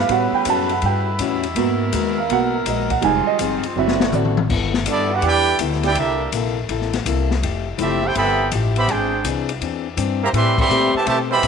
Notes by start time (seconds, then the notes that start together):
Already playing: B4
0.00 F5
0.08 A2 C#3 G3 A3 B3 C#4 E4 F#4 F#5, kick, ride
0.13 F#4
0.32 G5, muted upright bass stroke
0.45 F#2 A2 G3 C#4 F#4, kick, hi-hat pedal, ride
0.50 A5
0.69 F#5, ride
0.82 G2 A2 G3 C#4 G5, kick, ride
0.86 F#4
1.19 E2 A2 G3 C#4 F#4, kick, hi-hat pedal, ride
1.43 ride
1.55 G#2 G#3 A#3 B3 F#4 A#4, kick, ride
1.92 D#2 G#3 B3 F#4 A#4, kick, hi-hat pedal, ride
2.18 F5
2.29 B1 G#3 A#3 B3 F#4 A#4 F#5, kick, ride
2.55 A#4
2.66 A#1 G#3 B3 F#4 A#4 D#5, kick, hi-hat pedal, ride
2.90 F#5, kick, ride
3.01 F1 D#3 F3 G3 G#3 C4 D#4 F4 G#5, kick, ride
3.05 C4 D#4 G#4
3.27 D#5
3.39 G1 F3 C4 D#4 G#4, kick, hi-hat pedal, ride
3.63 muted upright bass stroke, ride
3.75 F#1 D3 F#3 A3 C4 E4 F#4 A4 E5
3.88 snare
4.00 snare
4.12 A1 D3 C4 F#4 A4 D5, hi-hat pedal, mid tom
4.25 mid tom
4.37 mid tom
4.49 G1 G3 B3 E4, kick, crash
4.53 A4
4.74 snare
4.86 G2 E3 G3 B3 D4 E4 A4, kick, hi-hat pedal, ride
4.90 B3 E4 A4 D5
5.10 D4 F#4 G4 B4 F#5
5.21 E2 G3 B3 D4 E4 G4, kick, ride
5.26 E4 A4 B4 D5 G5
5.59 D2 G3 B3 E4 A4, kick, hi-hat pedal, ride
5.72 snare
5.83 D4 E4 G4 B4 D5 G5, snare, ride
5.94 C2 C3 G3 A#3 D4 E4 G4 A#4 E5, kick, ride
5.99 E4 A4
6.32 A#1 C3 A#3 E4 A4, kick, hi-hat pedal, ride
6.69 A1 C3 A#3 E4 A4, kick, ride
6.82 snare
6.93 snare, ride
7.05 C2 C3 A#3 E4 A4, kick, hi-hat pedal, ride
7.31 snare
7.41 F1 F3 A3 E4 G4, kick, ride
7.78 F#1 F3 A3 C4 E4 G4 A4 E5, kick, hi-hat pedal, ride
7.82 G4
8.04 C4 E4 G4 A4 C5 G5
8.14 G1 C3 E3 F3 A3 B3 E4 G4 A4 E5 G5 B5, kick, ride
8.51 A1 F3 A3 E4 G4, kick, hi-hat pedal, ride
8.76 B3 G4 C5 E5 B5, ride
8.87 G#1 E3 C4 D4 G#4 C5 G5, kick, ride
8.91 D4
9.24 C2 E3 C4 D4 G#4, kick, hi-hat pedal, ride
9.49 ride
9.61 E2 E3 C4 D4 G#4, kick, ride
9.97 G2 E3 C4 D4 G#4, kick, hi-hat pedal, ride
10.23 A#3 G4 C5 E5 A#5
10.33 A2 E3 G3 A3 C4 G4 B4 E5 C6, kick, ride
10.58 E3 G3 C4 G4 E5 B5 C6, kick, crash
10.69 A#2 A3 C4 G4 B4, hi-hat pedal
10.94 C3 E3 A3 G4 C5 E5 A5, muted upright bass stroke
11.06 B2 C3 E3 A3 C4 G4 B4 C5 E5 A5, kick, ride
11.30 B2 E3 G3 G4 C5 E5 B5
11.43 A2 A3 C4 G4, kick, hi-hat pedal, ride